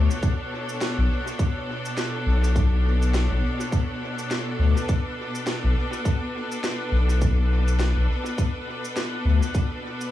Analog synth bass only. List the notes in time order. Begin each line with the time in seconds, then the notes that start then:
0.98 B1
2.26 B1
3.31 B1
4.59 D2
5.64 B1
6.92 B1
7.97 B1
9.25 D2